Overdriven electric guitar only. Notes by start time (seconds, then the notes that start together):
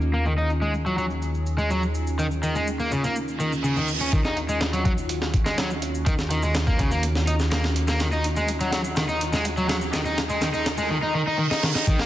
0.14 A#3
0.26 D#3
0.38 D#4
0.62 G#3
0.86 F#3
0.98 F#3
1.58 G#3
1.70 F#3
2.19 D#3
2.43 D#3
2.55 G#3
2.80 A#3
2.92 C#3
3.04 A#3
3.40 D#3
3.64 C#3
3.77 D#3
4.01 C#4
4.13 D#3
4.25 D#4
4.49 G#3
4.73 F#3
4.85 F#3
5.46 G#3
5.58 F#3
6.06 D#3
6.30 D#3
6.43 G#3
6.67 A#3
6.79 C#3
6.91 A#3
7.27 D#4
7.52 A#3
7.88 A#3
8.00 D#3
8.13 D#4
8.37 G#3
8.61 F#3
8.73 F#3
8.97 D#3
9.09 D#4
9.33 G#3
9.58 F#3
9.69 F#3
9.93 D#3
10.05 D#4
10.30 G#3
10.42 D#3
10.54 D#4
10.78 G#3
10.90 D#3
11.03 D#4
11.15 D#3
11.27 D#4
11.39 D#3
11.51 D#4
11.63 D#3
11.75 D#4
11.87 D#3
11.99 A#3